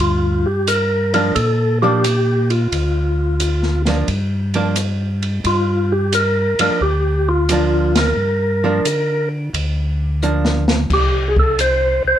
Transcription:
Already playing: tonewheel organ D2
0.00 tonewheel organ G2 F4, kick, ride
0.46 tonewheel organ G4
0.67 tonewheel organ A#4, hi-hat pedal, ride
1.14 hollow-body jazz guitar F3 A#3 D4, tonewheel organ A#4, ride
1.35 tonewheel organ A#2 A4, kick, ride
1.82 hollow-body jazz guitar F3 A#3 D4, tonewheel organ G4
2.04 cross-stick, hi-hat pedal, ride
2.50 tonewheel organ F4, ride
2.72 tonewheel organ D2, kick, ride
3.40 hi-hat pedal, ride
3.63 snare
3.85 hollow-body jazz guitar F3 A#3 D4, snare, ride
4.08 tonewheel organ G2, kick, ride
4.54 hollow-body jazz guitar F3 A#3 D4, ride
4.76 cross-stick, hi-hat pedal, ride
5.22 ride
5.44 tonewheel organ G2 F4, kick, ride
5.92 tonewheel organ G4
6.12 tonewheel organ A#4, hi-hat pedal, ride
6.59 tonewheel organ G2 A#4, hollow-body jazz guitar F3 A#3 D4, ride
6.81 tonewheel organ D2 G4, kick
7.29 tonewheel organ F4
7.49 hollow-body jazz guitar F3 A#3 D4, cross-stick, hi-hat pedal, ride
7.95 tonewheel organ A#4, snare, ride
8.16 tonewheel organ G2
8.64 hollow-body jazz guitar F3 A#3 D4
8.85 tonewheel organ D3, hi-hat pedal, ride
9.54 tonewheel organ D2, kick, ride
10.22 hollow-body jazz guitar F3 A#3 D4, hi-hat pedal
10.45 snare
10.68 snare
10.90 tonewheel organ C2 G4, kick, crash
11.28 tonewheel organ G#4
11.36 tonewheel organ A4, kick
11.59 tonewheel organ C5, hi-hat pedal, ride
12.04 tonewheel organ C2 C5

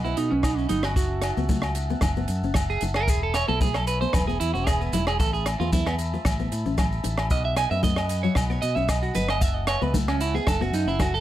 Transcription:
Already playing: fingered electric bass B1, tonewheel organ D#5 F#5 B5
0.04 nylon-string guitar B3, clean electric guitar E4, maracas
0.17 fingered electric bass B2, clean electric guitar D#4, closed hi-hat, muted conga, maracas
0.31 fingered electric bass B1, clean electric guitar C#4, nylon-string guitar C#4
0.43 clean electric guitar D#4, kick, cross-stick, low agogo, maracas
0.57 clean electric guitar C#4, maracas
0.69 fingered electric bass G1, clean electric guitar D#4, nylon-string guitar D#4, closed hi-hat, muted conga, high conga, maracas
0.83 clean electric guitar F#4, cross-stick, low agogo, maracas
0.95 fingered electric bass F#1, clean electric guitar F#4, tonewheel organ E5 F#5 A5, kick, muted conga, maracas
1.22 cross-stick, closed hi-hat, low agogo, maracas
1.37 fingered electric bass C#2, nylon-string guitar B3, maracas
1.49 nylon-string guitar A3, kick, high conga, maracas
1.62 cross-stick, low agogo, maracas
1.75 closed hi-hat, maracas
1.90 nylon-string guitar B3, maracas
2.01 fingered electric bass F#1, kick, cross-stick, muted conga, high conga, low agogo, maracas
2.16 nylon-string guitar B3, maracas
2.28 fingered electric bass F#2, closed hi-hat, muted conga, maracas
2.43 fingered electric bass F#1, nylon-string guitar C#4, maracas
2.54 muted clean electric guitar stroke, kick, cross-stick, high conga, low agogo, maracas
2.70 clean electric guitar G#4, maracas
2.81 fingered electric bass F#1, nylon-string guitar D#4, closed hi-hat, muted conga, maracas
2.94 clean electric guitar A#4, cross-stick, low agogo, maracas
3.07 fingered electric bass E1, clean electric guitar G#4, tonewheel organ G#5 B5, kick, muted conga, maracas
3.23 clean electric guitar A4
3.34 clean electric guitar C#5, cross-stick, closed hi-hat, low agogo, maracas
3.48 fingered electric bass B1, nylon-string guitar B3, clean electric guitar A4, maracas
3.61 nylon-string guitar A3, clean electric guitar G#4, kick, high conga, maracas
3.74 clean electric guitar A4, cross-stick, low agogo, maracas
3.87 clean electric guitar B4, closed hi-hat, maracas
4.01 nylon-string guitar B3, clean electric guitar C5, maracas
4.13 fingered electric bass E1, clean electric guitar B4, kick, cross-stick, muted conga, high conga, low agogo, maracas
4.27 nylon-string guitar B3, clean electric guitar G#4, maracas
4.40 fingered electric bass E2, clean electric guitar E4, closed hi-hat, maracas
4.54 fingered electric bass E1, nylon-string guitar C#4, clean electric guitar F#4, maracas
4.67 clean electric guitar G#4, kick, cross-stick, low agogo, maracas
4.81 clean electric guitar B3, maracas
4.93 fingered electric bass E1, nylon-string guitar D#4, clean electric guitar E4, closed hi-hat, muted conga, high conga, maracas
5.07 clean electric guitar G#4, cross-stick, low agogo, maracas
5.20 fingered electric bass A1, clean electric guitar A4, tonewheel organ E5, kick, muted conga, maracas
5.33 clean electric guitar G#4, maracas
5.46 cross-stick, closed hi-hat, low agogo, maracas
5.60 fingered electric bass E2, nylon-string guitar B3, clean electric guitar F4, maracas
5.73 nylon-string guitar B3, clean electric guitar E4, kick, high conga, maracas
5.87 clean electric guitar B3, cross-stick, low agogo, maracas
5.99 closed hi-hat, maracas
6.14 muted nylon-string guitar stroke, maracas
6.25 fingered electric bass A1, kick, cross-stick, muted conga, high conga, low agogo, maracas
6.39 nylon-string guitar B3, maracas
6.52 fingered electric bass A2, closed hi-hat, maracas
6.66 fingered electric bass A1, nylon-string guitar C#4, maracas
6.78 kick, cross-stick, high conga, low agogo, maracas
6.92 maracas
7.03 fingered electric bass A1, nylon-string guitar D#4, closed hi-hat, muted conga, maracas
7.18 cross-stick, low agogo
7.30 fingered electric bass B1, tonewheel organ D#5 F#5, clean electric guitar D#5, kick, muted conga, maracas
7.45 clean electric guitar E5
7.56 clean electric guitar G#5, cross-stick, closed hi-hat, low agogo, maracas
7.71 fingered electric bass F#2, nylon-string guitar B3, clean electric guitar E5, maracas
7.83 nylon-string guitar A3, clean electric guitar D#5, kick, high conga, maracas
7.96 cross-stick, low agogo, maracas
8.09 closed hi-hat, maracas
8.23 nylon-string guitar F#3, clean electric guitar C#5, maracas
8.35 fingered electric bass B1, muted clean electric guitar stroke, kick, cross-stick, muted conga, high conga, low agogo, maracas
8.50 nylon-string guitar B3, clean electric guitar C#5, maracas
8.62 fingered electric bass B2, clean electric guitar D#5, closed hi-hat, muted conga, maracas
8.76 fingered electric bass B1, nylon-string guitar C#4, clean electric guitar E5, maracas
8.89 clean electric guitar D#5, kick, cross-stick, low agogo, maracas
9.03 clean electric guitar F#4, maracas
9.15 fingered electric bass G1, clean electric guitar B4, muted nylon-string guitar stroke, closed hi-hat, muted conga, high conga, maracas
9.29 clean electric guitar D#5, cross-stick, low agogo, maracas
9.41 fingered electric bass F#1, tonewheel organ E5 A5, clean electric guitar E5, kick, muted conga, maracas
9.55 clean electric guitar D#5
9.67 clean electric guitar C#5, cross-stick, closed hi-hat, low agogo, maracas
9.81 fingered electric bass C#2, nylon-string guitar B3, clean electric guitar B4, maracas
9.94 nylon-string guitar A3, kick, high conga, maracas
10.08 clean electric guitar C#4, cross-stick, low agogo, maracas
10.21 clean electric guitar E4, closed hi-hat, maracas
10.34 nylon-string guitar B3, clean electric guitar G#4, maracas
10.47 fingered electric bass F#1, clean electric guitar A4, kick, cross-stick, muted conga, high conga, low agogo, maracas
10.61 nylon-string guitar B3, clean electric guitar F#4, maracas
10.72 fingered electric bass F#2, clean electric guitar D#4, closed hi-hat, muted conga, maracas
10.86 fingered electric bass F#1, nylon-string guitar C#4, clean electric guitar E4, maracas
10.99 clean electric guitar F#4, kick, cross-stick, high conga, low agogo, maracas
11.14 clean electric guitar A4, maracas

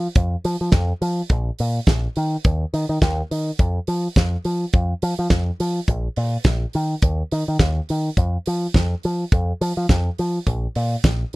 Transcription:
0.15 picked electric bass F2, kick, closed hi-hat
0.45 picked electric bass F3, open hi-hat
0.61 picked electric bass F3
0.72 picked electric bass F2, kick, snare, closed hi-hat
1.02 picked electric bass F3, open hi-hat
1.30 picked electric bass A#1, kick, closed hi-hat
1.59 picked electric bass A#2, open hi-hat
1.87 picked electric bass A#1, kick, snare, closed hi-hat
2.16 picked electric bass D#3, open hi-hat
2.44 picked electric bass D#2, kick, closed hi-hat
2.74 picked electric bass D#3, open hi-hat
2.89 picked electric bass D#3
3.02 picked electric bass D#2, kick, snare, closed hi-hat
3.31 picked electric bass D#3, open hi-hat
3.59 picked electric bass F2, kick, closed hi-hat
3.87 picked electric bass F3, open hi-hat
4.16 picked electric bass F2, kick, snare, closed hi-hat
4.45 picked electric bass F3, open hi-hat
4.73 picked electric bass F2, kick, closed hi-hat
5.02 picked electric bass F3, open hi-hat
5.19 picked electric bass F3
5.30 picked electric bass F2, kick, snare, closed hi-hat
5.60 picked electric bass F3, open hi-hat
5.88 picked electric bass A#1, kick, closed hi-hat
6.16 picked electric bass A#2, open hi-hat
6.44 picked electric bass A#1, kick, snare, closed hi-hat
6.73 picked electric bass D#3, open hi-hat
7.02 picked electric bass D#2, kick, closed hi-hat
7.32 picked electric bass D#3, open hi-hat
7.48 picked electric bass D#3
7.59 picked electric bass D#2, kick, snare, closed hi-hat
7.89 picked electric bass D#3, open hi-hat
8.17 picked electric bass F2, kick, closed hi-hat
8.46 picked electric bass F3, open hi-hat
8.74 picked electric bass F2, kick, snare, closed hi-hat
9.03 picked electric bass F3, open hi-hat
9.32 picked electric bass F2, kick, closed hi-hat
9.61 picked electric bass F3, open hi-hat
9.77 picked electric bass F3
9.89 picked electric bass F2, kick, snare, closed hi-hat
10.18 picked electric bass F3, open hi-hat
10.47 picked electric bass A#1, kick, closed hi-hat
10.75 picked electric bass A#2, open hi-hat
11.04 picked electric bass A#1, kick, snare, closed hi-hat

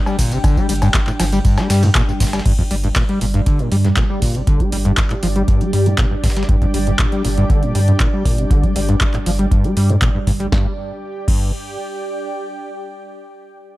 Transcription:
Already playing: analog synth pad G3 D4 G5
0.06 acid bass G3, tambourine, cowbell
0.19 sub bass G1, acid bass A#2, kick, open hi-hat, ride, tambourine
0.32 acid bass C3, closed hi-hat, tambourine
0.44 acid bass D3, kick, closed hi-hat, tambourine, cowbell
0.57 acid bass G3, kick, tambourine
0.69 sub bass G1, acid bass G3, closed hi-hat, open hi-hat, ride, tambourine
0.76 closed hi-hat
0.82 acid bass G2, closed hi-hat, tambourine, cowbell
0.94 acid bass G2, kick, snare, clap, closed hi-hat, tambourine
1.07 acid bass A2, clap, tambourine
1.20 sub bass G1, acid bass F3, snare, closed hi-hat, open hi-hat, ride, tambourine, cowbell
1.32 acid bass G3, closed hi-hat, tambourine
1.45 acid bass G2, kick, closed hi-hat, open hi-hat, tambourine
1.58 acid bass G3, snare, closed hi-hat, tambourine, cowbell
1.70 sub bass G2, acid bass G3, snare, closed hi-hat, open hi-hat, ride, tambourine
1.83 acid bass G2, closed hi-hat, open hi-hat, tambourine
1.95 acid bass A#2, kick, snare, clap, closed hi-hat, tambourine, cowbell
2.08 acid bass G2, tambourine
2.20 sub bass G1, acid bass G2, kick, snare, closed hi-hat, open hi-hat, ride, tambourine
2.27 snare, closed hi-hat
2.33 acid bass G3, snare, closed hi-hat, tambourine, cowbell
2.39 snare, closed hi-hat
2.46 acid bass G2, analog synth pad G3 D4 D5, ambient pad G4, kick, closed hi-hat, crash
2.58 acid bass F2, kick, closed hi-hat
2.71 sub bass G1, acid bass G3, closed hi-hat, open hi-hat
2.84 acid bass G2, closed hi-hat
2.96 acid bass A#2, kick, snare, clap, closed hi-hat
3.04 ambient pad D5
3.09 acid bass G3, closed hi-hat
3.21 sub bass G1, acid bass A#2, closed hi-hat, open hi-hat
3.34 acid bass G2, closed hi-hat
3.46 acid bass D3, kick, closed hi-hat
3.59 acid bass A#2, closed hi-hat
3.72 sub bass G2, acid bass G3, closed hi-hat, open hi-hat
3.84 acid bass G2, snare, closed hi-hat
3.89 ambient pad G5
3.97 acid bass A#2, kick, snare, clap, closed hi-hat
4.10 acid bass G3
4.22 sub bass G1, acid bass A#2, kick, open hi-hat
4.35 acid bass C3, closed hi-hat
4.47 acid bass D3, kick, closed hi-hat
4.60 acid bass G3, kick, closed hi-hat
4.72 sub bass G1, acid bass G3, closed hi-hat, open hi-hat
4.85 acid bass G2, closed hi-hat
4.97 acid bass G2, kick, snare, clap, closed hi-hat
5.10 acid bass A2, clap, closed hi-hat
5.23 sub bass G1, acid bass F3, closed hi-hat, open hi-hat
5.36 acid bass G3, closed hi-hat
5.48 acid bass G2, kick, closed hi-hat
5.61 acid bass G3, closed hi-hat
5.73 sub bass G2, acid bass G3, closed hi-hat, open hi-hat
5.86 acid bass G2, closed hi-hat
5.98 acid bass A#2, kick, snare, clap, closed hi-hat
6.11 acid bass G2
6.24 sub bass G1, acid bass G2, kick, snare, closed hi-hat, open hi-hat
6.30 snare, closed hi-hat
6.36 acid bass G3, snare, closed hi-hat
6.43 snare, closed hi-hat
6.49 acid bass G2, kick, closed hi-hat
6.62 acid bass F2, kick, closed hi-hat
6.74 sub bass G1, acid bass G3, open hi-hat
6.87 acid bass G2, closed hi-hat
6.99 acid bass A#2, kick, clap, closed hi-hat
7.12 acid bass G3, closed hi-hat
7.25 sub bass G1, acid bass A#2, open hi-hat
7.37 acid bass G2, closed hi-hat
7.50 acid bass D3, kick, closed hi-hat
7.63 acid bass A#2, closed hi-hat
7.75 sub bass G2, acid bass G3, open hi-hat
7.88 acid bass G2, closed hi-hat
8.00 acid bass A#2, kick, clap, closed hi-hat
8.13 acid bass G3
8.25 sub bass G1, acid bass A#2, kick, open hi-hat
8.38 acid bass C3, closed hi-hat
8.51 acid bass D3, kick, closed hi-hat
8.63 acid bass G3, kick, closed hi-hat
8.76 sub bass G1, acid bass G3, open hi-hat
8.89 acid bass G2, closed hi-hat
9.01 acid bass G2, kick, clap, closed hi-hat
9.14 acid bass A2, clap, closed hi-hat
9.26 sub bass G1, acid bass F3, open hi-hat
9.39 acid bass G3, closed hi-hat
9.51 acid bass G2, kick, closed hi-hat
9.64 acid bass G3, closed hi-hat
9.77 sub bass G2, acid bass G3, open hi-hat
9.90 acid bass G2, closed hi-hat
10.02 acid bass A#2, kick, clap, closed hi-hat
10.15 acid bass G2
10.27 sub bass G1, acid bass G2, kick, open hi-hat
10.40 acid bass G3, closed hi-hat
10.52 sub bass G1, acid bass G2, ambient pad G4, kick, snare
10.60 ambient pad D5
10.68 ambient pad G5
11.28 sub bass G1, acid bass G2, kick, crash

